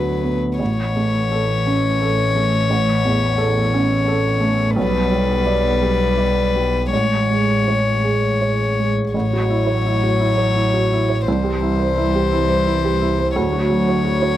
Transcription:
Already playing: D2 F#3 B3 F#4 B4
0.24 B3
0.59 A1 E3 C#5
0.96 A3
1.32 A4
1.67 C#4
2.02 A4
2.36 A3
2.70 A1
3.05 E2
3.38 A4
3.74 C#4
4.08 A4
4.41 A3
4.76 B1 G3 B4
5.12 G3
5.46 D5
5.82 G4
6.18 D5
6.56 G3
6.91 A1 G#3 C#5
7.31 G#3
7.68 C#5
8.04 G#4
8.41 C#5
8.80 G#3
9.13 A1 F#3 C#5
9.33 F#4
9.50 E4
9.67 C#5
9.86 E4
10.03 F#4
10.20 E4
10.37 C#5
10.55 E4
10.74 F#4
10.92 E4
11.09 C#5
11.25 C2 E3 C5
11.44 G4
11.62 E4
11.80 C5
11.97 E4
12.15 G4
12.32 E4
12.49 C5
12.66 E4
12.85 G4
13.01 E4
13.19 C5
13.35 D2 F#3 C#5
13.52 F#4
13.70 F#3
13.89 C#5
14.05 F#4
14.22 C#5

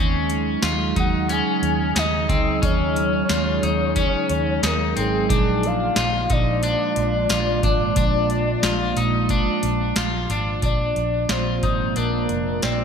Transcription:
Already playing: D#2 C#3 F#3 G#3 C#4 D#4 G#4
0.30 closed hi-hat
0.62 D#2 F4, snare, closed hi-hat, tambourine
0.96 D#2 D#4 F#5, kick, closed hi-hat
1.29 C#4 G#5, closed hi-hat
1.62 D#2, closed hi-hat
1.96 D#2 D#4 D#5, snare, closed hi-hat, tambourine
2.29 C#2 C4, kick, closed hi-hat
2.62 D#2 C#4 C#5, kick, closed hi-hat
2.96 closed hi-hat
3.29 D#2 F4, snare, closed hi-hat, tambourine
3.63 D#2 D#4, closed hi-hat
3.96 C#4, kick, closed hi-hat
4.29 D#2, closed hi-hat
4.63 D#2 D#4 A#4, snare, closed hi-hat, tambourine
4.96 G#1 C4 G#4, closed hi-hat
5.29 A#1 A#2 F3 G#3 A#3 D4 F4, kick, closed hi-hat
5.63 F5, closed hi-hat
5.96 A#1 F4, snare, closed hi-hat, tambourine
6.30 A#1 D#4 D5, kick, closed hi-hat
6.63 D4, closed hi-hat
6.96 A#1, closed hi-hat
7.29 A#1 F4, snare, closed hi-hat, tambourine
7.63 G#1 D4, kick, closed hi-hat
7.96 A#1 D4, kick, closed hi-hat
8.30 closed hi-hat
8.63 A#1 F4, snare, closed hi-hat, tambourine
8.97 A#1 D#4, closed hi-hat
9.29 D4, kick, closed hi-hat
9.63 A#1, closed hi-hat
9.96 A#1 F4, snare, closed hi-hat, tambourine
10.29 G#1 D4, closed hi-hat
10.62 A#1 A#2 F3 G#3 A#3 D4 F4 D5, kick, closed hi-hat
10.96 A#1, closed hi-hat
11.29 A#1 F4 C5, snare, closed hi-hat
11.63 G#1 D#4, kick, closed hi-hat
11.96 A#1 D4 A#4, closed hi-hat
12.29 F1, closed hi-hat
12.62 A#1 C4 D5, snare, closed hi-hat

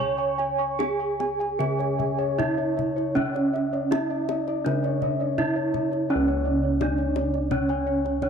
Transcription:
Already playing: C#3 C#5 G#5 C#6
0.18 G#5 C#6
0.38 G#5, kendang slap
0.58 G#5 C#6
0.79 D4 G#4 G#5, kendang slap, kendang high
1.00 G#5
1.20 G#5, kendang high
1.39 G#5, kendang slap
1.59 C#3 G#4 E5 G#5, kendang high
1.79 C#5 G#5, kendang slap
1.99 E5 G#5, kendang low
2.19 C#5 G#5
2.38 D4 E4 E5, kendang slap, kendang low
2.58 C#5 E5
2.77 C#5 E5, kendang low
2.96 C#5, kendang slap
3.15 C#4 C#5 E5, kendang low
3.34 C#5 D5, kendang slap
3.53 E5, kendang slap
3.73 C#5 D5, kendang slap
3.91 D4 E4 E5, kendang slap, kendang high
4.10 D5 E5
4.29 D5 E5, kendang slap, kendang high
4.47 D5, kendang slap
4.65 C#3 D4 D5 E5, kendang high
4.83 C#5 D5, kendang slap
5.01 E5, kendang low
5.20 C#5 D5
5.38 D4 E4 E5, kendang slap, kendang low
5.56 C#5 E5
5.74 C#5 E5, kendang slap, kendang low
5.92 C#5, kendang slap
6.09 C#4 C#5 D5
6.15 C#2
6.27 C#5
6.45 D5
6.63 C#5
6.81 D4 D5, kendang high, kendang low
6.98 C#5 D5, kendang slap
7.16 C#5 D5, kendang high
7.34 D5, kendang slap
7.51 C#4 C#5, kendang low
7.69 C#5 G#5, kendang slap
7.87 C#5
8.05 C#5, kendang slap
8.22 C#4 D4 C#5, kendang low

